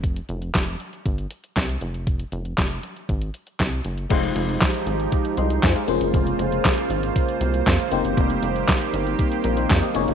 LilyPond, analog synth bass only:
\new Staff \with { instrumentName = "Analog synth bass" } { \clef bass \time 4/4 \key f \minor \tempo 4 = 118 f,,8 f,,8 f,,8 r8 g,,8 r8 c,8 f,,8~ | f,,8 f,,8 f,,8 r8 aes,,8 r8 c,8 ges,,8 | f,,8 f,,8 r8 aes,,8 r8 c,8 f,16 r16 f,,16 ges,,16 | f,,8 f,,8 r8 aes,,8 r8 c,8 f,16 r16 f,,16 ges,,16 |
f,,8 f,,8 r8 g,,8 r8 bes,,8 f,16 r16 f,,16 ges,,16 | }